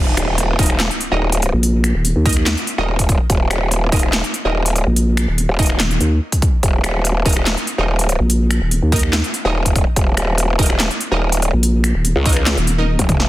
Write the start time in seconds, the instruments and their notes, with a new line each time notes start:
Already playing: wobble bass D#1, impact
0.17 wobble bass D#1, finger snap, closed hi-hat
0.38 closed hi-hat
0.59 wobble bass D#1, synth stab D#4 A#4 D#5, kick, closed hi-hat
0.63 closed hi-hat
0.66 closed hi-hat
0.70 wobble bass D#1, finger snap
0.80 snare, clap, closed hi-hat
0.91 closed hi-hat
1.01 closed hi-hat
1.12 wobble bass D#1, synth stab D#4 A#4 D#5
1.32 closed hi-hat
1.42 closed hi-hat
1.53 wobble bass A#1
1.63 closed hi-hat
1.84 finger snap, closed hi-hat
1.95 wobble bass D#1
2.05 closed hi-hat
2.16 wobble bass D#2
2.26 synth stab D#4 A#4 D#5, kick, closed hi-hat
2.29 closed hi-hat
2.33 closed hi-hat
2.37 finger snap
2.46 finger snap, snare, clap, closed hi-hat
2.57 closed hi-hat
2.67 closed hi-hat
2.78 wobble bass D#1, synth stab D#4 A#4 D#5
2.99 kick, closed hi-hat
3.09 kick, closed hi-hat
3.30 wobble bass D#1, kick, closed hi-hat
3.51 wobble bass D#1, finger snap, closed hi-hat
3.71 closed hi-hat
3.92 synth stab D#4 A#4 D#5, kick, closed hi-hat
3.96 closed hi-hat
3.99 closed hi-hat
4.03 wobble bass D#1, finger snap
4.13 snare, clap, closed hi-hat
4.24 closed hi-hat
4.34 closed hi-hat
4.45 wobble bass D#1, synth stab D#4 A#4 D#5
4.66 closed hi-hat
4.76 closed hi-hat
4.87 wobble bass A#1
4.96 closed hi-hat
5.17 finger snap, closed hi-hat
5.28 wobble bass D#1
5.38 closed hi-hat
5.49 wobble bass D#1
5.59 synth stab D#4 A#4 D#5, kick, closed hi-hat
5.63 closed hi-hat
5.66 closed hi-hat
5.70 finger snap
5.80 wobble bass D#1, finger snap, snare, clap, closed hi-hat
5.91 closed hi-hat
6.01 wobble bass D#2, closed hi-hat
6.32 kick, closed hi-hat
6.42 kick, closed hi-hat
6.63 wobble bass D#1, kick, closed hi-hat
6.84 wobble bass D#1, finger snap, closed hi-hat
7.05 closed hi-hat
7.26 wobble bass D#1, synth stab D#4 A#4 D#5, kick, closed hi-hat
7.29 closed hi-hat
7.33 closed hi-hat
7.37 wobble bass D#1, finger snap
7.46 snare, clap, closed hi-hat
7.57 closed hi-hat
7.67 closed hi-hat
7.78 wobble bass D#1, synth stab D#4 A#4 D#5
7.99 closed hi-hat
8.09 closed hi-hat
8.20 wobble bass A#1
8.30 closed hi-hat
8.51 finger snap, closed hi-hat
8.62 wobble bass D#1
8.71 closed hi-hat
8.82 wobble bass D#2
8.92 synth stab D#4 A#4 D#5, kick, closed hi-hat
8.96 closed hi-hat
8.99 closed hi-hat
9.03 finger snap
9.13 finger snap, snare, clap, closed hi-hat
9.24 closed hi-hat
9.34 closed hi-hat
9.45 wobble bass D#1, synth stab D#4 A#4 D#5
9.66 kick, closed hi-hat
9.76 kick, closed hi-hat
9.96 wobble bass D#1, kick, closed hi-hat
10.17 wobble bass D#1, finger snap, closed hi-hat
10.38 closed hi-hat
10.59 wobble bass D#1, synth stab D#4 A#4 D#5, kick, closed hi-hat
10.63 closed hi-hat
10.66 closed hi-hat
10.70 wobble bass D#1, finger snap
10.80 snare, clap, closed hi-hat
10.91 closed hi-hat
11.01 closed hi-hat
11.11 wobble bass D#1, synth stab D#4 A#4 D#5
11.32 closed hi-hat
11.42 closed hi-hat
11.53 wobble bass A#1
11.63 closed hi-hat
11.84 finger snap, closed hi-hat
11.95 wobble bass D#1
12.05 closed hi-hat
12.16 wobble bass C#2
12.26 synth stab D#4 A#4 D#5, kick, closed hi-hat
12.29 closed hi-hat
12.33 closed hi-hat
12.37 finger snap
12.46 finger snap, snare, clap, closed hi-hat
12.57 wobble bass D#1, closed hi-hat
12.67 closed hi-hat
12.78 synth stab D#4 A#4 D#5
12.99 wobble bass D#1, kick, closed hi-hat, high tom
13.09 kick, closed hi-hat, mid tom
13.20 snare